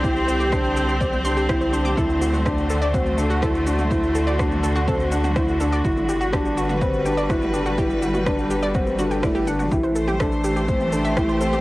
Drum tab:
SH |xxxxxxxxxxxxxxxx|xxxxxxxxxxxxxxxx|xxxxxxxxxxxxxxxx|xxxxxxxxxxxxxxxx|
SD |----r-------r---|----r-------r---|----r-------r---|----r-------r---|
T2 |---o-----o-----o|---o-----o-----o|-----o-----o----|-o-----o-----o--|
BD |o---o---o---o---|o---o---o---o---|o---o---o---o---|o---o---o---o---|

SH |xxxxxxxxxxxxxxxx|xxxxxxxxxxxxxxxx|
SD |----r-------r---|----r-------r---|
T2 |---o-----o-----o|---o-----o-----o|
BD |o---o---o---o---|o---o---o---o---|